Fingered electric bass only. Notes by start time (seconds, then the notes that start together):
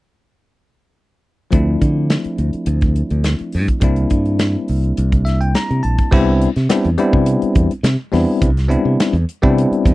1.52 D2
1.81 D3
2.26 muted fingered electric bass stroke
2.39 D2
2.54 muted fingered electric bass stroke
2.67 D2
3.11 D2
3.41 muted fingered electric bass stroke
3.55 G2
3.82 C2
4.11 G2
4.69 C2
4.98 C2
5.71 C3
5.85 A#1
5.99 muted fingered electric bass stroke
6.12 C2
6.56 C3
6.85 E2
7.13 C3
7.43 muted fingered electric bass stroke
7.56 E2
7.71 muted fingered electric bass stroke
7.83 C3
8.13 E2
8.42 C2
8.85 C3
9.13 E2
9.43 C3
9.71 muted fingered electric bass stroke
9.85 E2